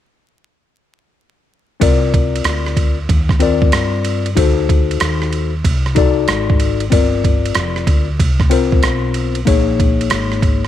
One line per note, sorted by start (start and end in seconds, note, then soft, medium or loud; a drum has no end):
1.80 2.42 C2 loud
1.80 2.96 C4 medium
1.80 2.97 F4 medium
1.80 2.97 A#4 medium
1.80 2.98 D5 medium
1.80 kick loud
1.80 ride medium
2.14 kick medium
2.14 ride soft
2.36 ride soft
2.44 3.05 D2 medium
2.44 cross-stick medium
2.44 hi-hat pedal soft
2.44 ride medium
2.66 cross-stick soft
2.77 kick medium
2.77 ride medium
3.09 3.70 D#2 medium
3.09 kick medium
3.09 ride medium
3.29 kick medium
3.29 cross-stick soft
3.40 4.28 C4 medium
3.40 4.28 F4 medium
3.40 4.28 A#4 medium
3.40 4.29 D5 medium
3.40 ride medium
3.62 kick medium
3.72 4.34 G2 medium
3.72 cross-stick loud
3.72 hi-hat pedal soft
3.72 ride medium
4.05 ride medium
4.26 ride soft
4.35 4.97 D2 loud
4.35 5.52 D#4 medium
4.35 5.52 F#4 medium
4.35 5.53 A4 medium
4.35 5.53 C5 medium
4.35 kick loud
4.35 ride medium
4.69 kick medium
4.69 ride medium
4.91 ride soft
5.00 5.61 D#2 medium
5.00 cross-stick loud
5.00 hi-hat pedal soft
5.00 ride medium
5.22 cross-stick soft
5.33 ride soft
5.64 6.25 C2 medium
5.64 kick medium
5.64 ride medium
5.86 cross-stick soft
5.95 6.83 D#4 medium
5.95 6.83 F#4 medium
5.95 6.84 A4 medium
5.95 6.84 D5 medium
5.95 kick medium
5.95 ride medium
6.28 6.89 G#1 medium
6.28 cross-stick loud
6.28 hi-hat pedal soft
6.28 ride medium
6.50 kick loud
6.60 ride medium
6.80 ride soft
6.90 7.53 G1 medium
6.90 8.07 C4 medium
6.90 8.07 F4 medium
6.90 8.08 A#4 medium
6.90 8.08 D5 medium
6.90 kick medium
6.90 ride medium
7.24 kick medium
7.24 ride medium
7.46 ride soft
7.55 7.86 F1 medium
7.55 cross-stick medium
7.55 hi-hat pedal medium
7.55 ride medium
7.76 cross-stick soft
7.87 8.18 D2 medium
7.87 kick medium
7.87 ride medium
8.20 8.80 C2 medium
8.20 kick medium
8.20 ride medium
8.40 kick medium
8.40 cross-stick soft
8.50 9.38 C4 medium
8.50 9.38 F4 medium
8.50 9.39 A#4 medium
8.50 9.39 C5 medium
8.50 ride medium
8.72 kick medium
8.83 9.44 B1 medium
8.83 cross-stick loud
8.83 hi-hat pedal soft
8.83 ride medium
9.14 ride medium
9.35 ride soft
9.45 10.08 A#1 loud
9.45 10.62 A#3 medium
9.45 10.62 D#4 medium
9.45 10.63 G#4 medium
9.45 10.63 C#5 medium
9.45 kick loud
9.45 ride medium
9.80 kick medium
9.80 ride medium
10.01 ride soft
10.10 10.68 G#1 medium
10.10 cross-stick loud
10.10 hi-hat pedal soft
10.10 ride medium
10.32 cross-stick soft
10.42 kick medium
10.42 ride soft
10.65 cross-stick soft